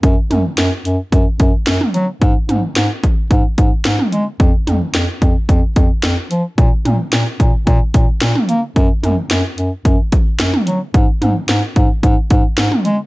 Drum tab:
HH |x-x-x-x-x-x-x-x-|x-x-x-x-x-x-x-x-|x-x-x-x-x-x-x-x-|x-x-x-x-x-x-x-x-|
SD |----o-------o---|----o-------o---|----o-------o---|----o-------o---|
T2 |--o----------o--|--o----------o--|--o-------------|--o----------o--|
BD |o-------o-o-----|o-----o-o-o-----|o-----o-o-o-----|o-----o-o-o-----|

HH |x-x-x-x-x-x-x-x-|x-x-x-x-x-x-x-x-|
SD |----o-------o---|----o-------o---|
T2 |--o----------o--|--o----------o--|
BD |o-------o-o-----|o-----o-o-o-----|